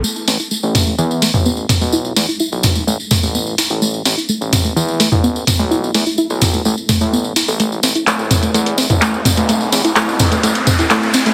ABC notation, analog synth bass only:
X:1
M:4/4
L:1/16
Q:1/4=127
K:Am
V:1 name="Analog synth bass" clef=bass
z2 A,,, z2 A,,,3 E,,3 A,,,3 z B,,,- | B,,,2 E,, z2 B,,,3 A,,, z2 A,,,3 z A,,,- | A,,,2 A,,, z2 A,,,3 E,,3 A,,,3 z B,,,- | B,,,2 E,, z2 B,,,3 A,,, z2 A,,,3 z A,,,- |
A,,,2 A,,, z2 A,,,3 E,,3 A,,,3 z B,,,- | B,,,2 E,, z2 B,,,3 A,,, z2 A,,,3 z A,,, |]